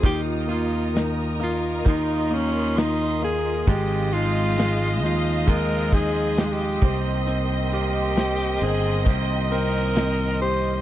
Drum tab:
HH |x-x-x-x-x-x-x-x-|x-x-x-x-xxx-x-xx|x-x-x-x-xxx-x-xx|
SD |----o-------o---|----o-------o---|----o-------o---|
BD |o-------o-------|o-------o-o---o-|--------o-------|